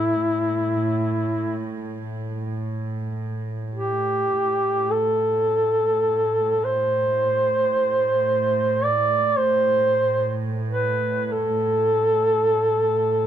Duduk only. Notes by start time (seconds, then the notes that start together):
Already playing: E4
3.75 G4
4.91 A4
6.64 C5
8.84 D5
9.37 C5
10.70 B4
11.26 B4
11.32 A4